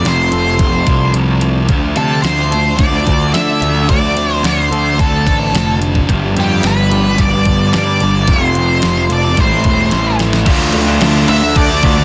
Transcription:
Already playing: F2 C3 F3 A3 C4 F4
0.04 F1 F2 C3 F3 C4, snare, closed hi-hat
0.08 C5
0.32 F1 C3 F3 A4, closed hi-hat
0.59 F1 F2 C3 F3 C4, kick, closed hi-hat
0.86 C2 C3 F3 D4, kick, closed hi-hat
1.14 C2 F2 C3 F3, closed hi-hat
1.41 C3 F3 D4, closed hi-hat
1.69 D2 D3 F3 A3 D4 F4, kick, closed hi-hat
1.96 C3 A3 C4 D4 A4, closed hi-hat
2.22 D2 D3 A3 C4 D4 C5, snare, closed hi-hat
2.39 snare
2.51 A3 D4 A4, closed hi-hat
2.76 D2 D3 C4 D5, kick, closed hi-hat
2.80 A3 D4
3.05 D2 A3 D4, kick, closed hi-hat
3.33 D3 F3 A3 D4 E5, snare, closed hi-hat
3.60 D2 A3 D4, closed hi-hat
3.89 D2 D3 F3 A3 D4 D5, kick, closed hi-hat
4.16 A3 C4 D4, closed hi-hat
4.33 C5
4.43 D2 D3 A3 C4 D4 C5, snare, closed hi-hat
4.71 D2 A3 D4 A4, closed hi-hat
4.98 D2 D3 A3 C4 D4 A4, kick, closed hi-hat
5.26 A1 A3 D4, kick, closed hi-hat
5.52 F1 D3 F3 A3 D4, snare, closed hi-hat
5.80 A3 D4, closed hi-hat
5.95 kick
6.08 G1 G2 D3 F3 G3 B3 G4, kick, closed hi-hat
6.36 F2 D3 G3 B3 G4, closed hi-hat
6.63 G1 G2 D3 G3 B3 B4, snare, closed hi-hat
6.90 D3 G3 G4, closed hi-hat
7.18 G1 G2 D3 G3 B3 D5, kick, closed hi-hat
7.45 G1 D3 G3 D4, kick, closed hi-hat
7.72 G2 D3 F3 G3 D5, snare, closed hi-hat
8.00 G1 D3 G3 D4, closed hi-hat
8.28 F1 F2 C3 F3 A3 C4 F4 C5, kick, closed hi-hat
8.55 C3 F3 C4, closed hi-hat
8.82 F1 F2 C3 F3 C4, snare, closed hi-hat
8.97 snare
9.10 F1 C3 F3 A4 D5, closed hi-hat
9.37 A1 A2 E3 G3 A3 C4 E4 C5, kick, closed hi-hat
9.64 E1 E3 A3 E4, kick, closed hi-hat
9.91 A1 A2 E3 G3 A3, snare, closed hi-hat
10.19 E3 A3 E4, snare, closed hi-hat
10.33 snare
10.46 D2 D3 F3 A3 D4 F4, kick, crash
10.72 D2 A3, crash
10.86 A3 D4 F4
11.00 D2 D3 F3 A3 D4 F4, snare, crash
11.28 D2 D3 A3 D4 F4 E5, crash
11.42 muted overdriven electric guitar stroke, muted distorted electric guitar stroke
11.56 D2 A4 D5, kick, crash
11.69 A3 D4
11.83 D2 D3 A3 D4 F4, kick, crash
11.97 muted overdriven electric guitar stroke, muted distorted electric guitar stroke

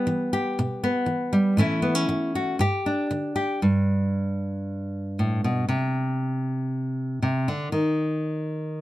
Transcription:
Already playing: G3 B3 G4
0.07 E3
0.33 G4
0.59 B2
0.84 B3
1.06 E3
1.33 G3
1.57 A2 E3 A3 C#4 E4
1.82 B3
1.95 C#4
2.09 E3
2.35 F#4
2.59 G2 G4
2.86 D4
3.11 D3
3.36 G4
3.62 G2
5.19 A2
5.44 B2
5.69 C3
7.22 C3
7.48 D3
7.72 D#3

